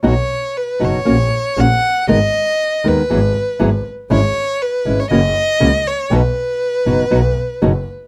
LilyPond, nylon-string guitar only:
\new Staff \with { instrumentName = "Nylon-string guitar" } { \time 4/4 \key b \major \tempo 4 = 119 <b, fis b dis' fis'>8 r4 <b, fis b dis' fis'>8 <ais cis' fis'>8 r8 <ais cis' fis'>8 r8 | <dis gis b dis' ais'>8 r4 <dis gis b dis' ais'>8 <e fis b e' gis'>8 r8 <e fis b e' gis'>8 r8 | <gis cis' e'>8 r4 <gis cis' e'>8 <cis e ais cis' fis'>8 r8 <cis e ais cis' fis'>8 r8 | <b, fis b dis' fis'>8 r4 <b, fis b dis' fis'>8 <b, fis b dis' fis'>8 r8 <b, fis b dis' fis'>8 r8 | }